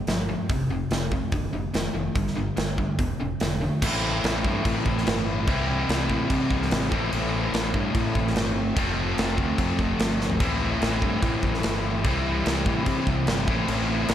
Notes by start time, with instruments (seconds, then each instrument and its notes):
0.07 fingered electric bass G1, overdriven electric guitar G2 F3, snare, open hi-hat
0.29 overdriven electric guitar G2 F3
0.49 fingered electric bass F1, overdriven electric guitar F2 C3, kick, open hi-hat
0.69 fingered electric bass F1, overdriven electric guitar F2 C3
0.91 fingered electric bass F1, overdriven electric guitar F2 C3, snare, open hi-hat
1.12 overdriven electric guitar F2 C3, kick
1.32 fingered electric bass F1, overdriven electric guitar F2 D3, kick, open hi-hat
1.53 fingered electric bass F1, overdriven electric guitar F2 D3
1.74 fingered electric bass F1, overdriven electric guitar F2 D#3, snare, open hi-hat
1.94 fingered electric bass F1, overdriven electric guitar F2 D#3
2.15 fingered electric bass G1, overdriven electric guitar G2 D3, kick, open hi-hat
2.27 snare
2.36 fingered electric bass G1, overdriven electric guitar G2 D3
2.57 fingered electric bass G1, overdriven electric guitar G2 D3, snare, open hi-hat
2.78 overdriven electric guitar G2 D3, kick
2.99 fingered electric bass E1, overdriven electric guitar E2 B2, kick, open hi-hat
3.20 fingered electric bass E1, overdriven electric guitar E2 C#3
3.40 fingered electric bass E1, overdriven electric guitar E2 D3, snare, open hi-hat
3.61 overdriven electric guitar E2 D3
3.82 fingered electric bass A1, overdriven electric guitar A2 E3 A3 C4 E4, kick, crash
4.24 fingered electric bass A1, snare, crash
4.45 fingered electric bass G2, kick
4.65 fingered electric bass A2, kick, crash
4.86 fingered electric bass A1, kick
4.98 snare
5.07 fingered electric bass G1, snare, crash
5.46 fingered electric bass C2, overdriven electric guitar C3 E3 G3 C4 E4, kick, crash
5.89 fingered electric bass C2, snare, crash
6.10 fingered electric bass A2, kick
6.30 fingered electric bass C3, kick, crash
6.50 fingered electric bass C2, kick
6.62 snare
6.71 fingered electric bass G#1, snare, crash
6.91 fingered electric bass A1, overdriven electric guitar A2 E3 A3 C4 E4, kick
7.13 fingered electric bass A1, crash
7.53 fingered electric bass A1, snare, crash
7.74 fingered electric bass G2, kick
7.95 fingered electric bass A2, kick, crash
8.15 fingered electric bass A1, kick
8.27 snare
8.35 fingered electric bass G1, snare, crash
8.76 fingered electric bass F1, overdriven electric guitar F3 A3 C4 F4, kick, crash
9.17 fingered electric bass F1, snare, crash
9.38 fingered electric bass D2, kick
9.58 fingered electric bass F2, kick, crash
9.79 fingered electric bass F1, kick
9.99 fingered electric bass G1, snare, crash
10.21 snare
10.30 floor tom
10.40 fingered electric bass A1, overdriven electric guitar A2 E3 A3 C4 E4, kick, crash
10.82 fingered electric bass A1, snare, crash
11.02 fingered electric bass G2, kick
11.22 fingered electric bass A2, kick, crash
11.43 fingered electric bass A1, kick
11.54 snare
11.63 fingered electric bass G1, snare, crash
12.03 fingered electric bass C2, overdriven electric guitar C3 E3 G3 C4 E4, kick, crash
12.46 fingered electric bass C2, snare, crash
12.66 fingered electric bass A2, kick
12.86 fingered electric bass C3, kick, crash
13.07 fingered electric bass C2, kick
13.27 fingered electric bass G1, snare, crash
13.47 fingered electric bass A1, overdriven electric guitar A2 E3 A3 C4 E4, kick
13.68 fingered electric bass A1, crash
14.08 fingered electric bass A1, snare, crash